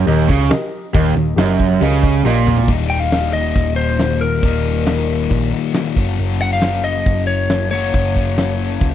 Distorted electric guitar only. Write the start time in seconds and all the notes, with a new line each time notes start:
0.07 D#2
0.28 C#3
0.94 D#2
1.17 D#2
1.38 F#2
1.81 C#3
2.24 A#2
2.67 D#2 A#2 D#3 G3 A#3 D#4
4.43 D#2 A#2 D#3 G3 A#3 D#4
5.96 F#2 C#3 F#3 A#3 C#4 F#4
7.72 F#2 C#3 F#3 A#3 C#4 F#4